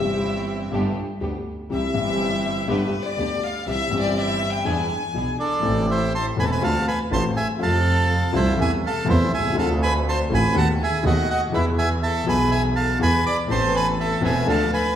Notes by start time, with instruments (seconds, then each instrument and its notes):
Already playing: upright piano G1 E3 G3, string section E4, violin section E5
0.00 double bass G1, upright piano G2 C4 G4, string section C4 G4
0.72 upright piano G1 G2 D3 G3 B3 G4, double bass G1, string section B3 D4 G4
1.21 upright piano D2 D3 G3 B3 G4, double bass D2, string section B3 D4 G4
1.69 upright piano C2 C3 E3 G3 C4 G4, double bass C2, string section C4 E4 G4, violin section E5
1.92 upright piano G1 G2 E3 G3 C4, double bass G1, string section C4 E4 G4
1.96 upright piano G4
2.67 upright piano G1 G2 D3 G3 B3 G4, double bass G1, string section B3 D4 G4, violin section B4
3.04 violin section D5
3.17 upright piano D2 D3 G3 B3 G4, double bass D2, string section B3 D4 G4
3.45 violin section F5
3.66 double bass C2, upright piano C2 C3 E3 G3 C4 G4, string section C4 E4 G4, violin section E5
3.89 upright piano G1 G2 E3 G3 C4 G4, double bass G1, string section C4 E4 G4
4.02 violin section D5
4.18 violin section E5
4.50 violin section G5
4.64 upright piano E2 E3 B3 D4 G#4, double bass E2, string section D4 E4 G#4, violin section G#5
5.13 upright piano B1 B2 E3 B3 D4 G#4, double bass B1, string section D4 E4 G#4
5.40 violin section D4, bandoneon A4 D5
5.60 upright piano A1 A2 E3 A3 C4
5.64 double bass A1, upright piano A4
5.90 violin section E4, bandoneon C5 E5
6.15 violin section C5, bandoneon A5 C6
6.36 upright piano E1 E2 E3 A3 C4 A4, double bass E1, bandoneon G#5 B5
6.42 violin section B4, bandoneon A5
6.47 violin section A4
6.52 violin section B4, bandoneon G#5 B5
6.61 upright piano D2 D3 A3 C4 F4, double bass D2, violin section A4, bandoneon F5 A5
6.88 violin section B4, bandoneon G#5 B5
7.11 upright piano A1 A2 D3 A3 C4 F4, double bass A1, violin section C5, bandoneon A5 C6
7.37 violin section G#4, bandoneon E5 G#5
7.57 upright piano F2 C3 F3 A3 C4, double bass F2
7.61 upright piano F4, violin section A4, bandoneon F5 A5
8.33 upright piano C2 C3 E3 A3 C4 F4, double bass C2, violin section E4, bandoneon C5 E5
8.57 upright piano E2 C3 E3 A3 B3 E4, double bass E2, violin section G#4
8.61 bandoneon E5 G#5
8.85 violin section A4, bandoneon F5 A5
9.05 upright piano E2 C3 E3 A3 B3 E4, double bass E2
9.09 violin section E4, bandoneon C5 E5
9.33 double bass C2, violin section G#4, bandoneon E5 G#5
9.38 upright piano B1
9.44 upright piano C2
9.49 upright piano C#2
9.53 upright piano D2 D3 A3 C4 F4, double bass D2
9.59 violin section A4, bandoneon F5 A5
9.83 violin section B4, bandoneon G#5 B5
10.09 violin section C5, bandoneon A5 C6
10.29 upright piano A1 A2 D3 A3 C4 F4, double bass A1
10.34 violin section B4, bandoneon G#5 B5
10.54 upright piano D#2 D#3 A3 B3 F#4, double bass D#2, violin section A4, bandoneon F#5
10.58 bandoneon A5
10.80 violin section G#4, bandoneon E5 G#5
11.03 upright piano D#2 D#3 A3 B3 F#4, double bass D#2, violin section F#4, bandoneon D#5
11.07 bandoneon F#5
11.30 violin section F#4, bandoneon D#5 F#5
11.50 upright piano E2 E3 G#3 B3 G#4, double bass E2
11.54 violin section E4, bandoneon B4 E5
11.78 violin section G#4, bandoneon E5 G#5
12.03 violin section A4, bandoneon E5 A5
12.24 upright piano B1 B2 E3 G#3 B3 G#4, double bass B1, violin section B4
12.29 bandoneon G#5 B5
12.51 violin section G#4, bandoneon E5 G#5
12.76 violin section A4, bandoneon F5 A5
12.99 upright piano E2 E3 G#3 B3 G#4, double bass E2, violin section B4, bandoneon G#5 B5
13.26 violin section D5, bandoneon B5 D6
13.46 upright piano A1 A2 E3 B3 C4 A4, double bass A1, string section A4 B4
13.51 violin section C5, bandoneon A5 C6
13.76 violin section B4, bandoneon G#5 B5
14.00 violin section A4, bandoneon E5 A5
14.21 upright piano E1 E2 E3 B3 C4 A4, double bass E1, string section C4 A4 B4, violin section G#4
14.25 bandoneon E5 G#5
14.46 upright piano D2 D3 F3 A3 D4 A4, double bass D2, string section D4 F4 A4, violin section A4, bandoneon F5 A5
14.73 violin section B4, bandoneon G#5 B5